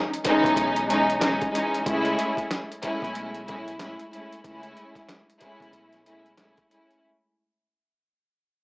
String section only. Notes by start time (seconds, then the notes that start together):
0.25 E3 G#3 C#4 D#4
0.88 E3 G#3 C#4 D#4
1.21 E3 G#3 C#4 D#4
1.51 E3 G#3 C#4 D#4
1.85 G#3 A3 C#4 E4
2.82 G#3 A3 C#4 E4
3.47 G#3 A3 C#4 E4
3.80 G#3 A3 C#4 E4
4.12 G#3 A3 C#4 E4
4.43 G#3 A3 C#4 E4
5.41 G#3 A3 C#4 E4
6.06 G#3 A3 C#4 E4
6.38 G#3 A3 C#4 E4
6.70 G#3 A3 C#4 E4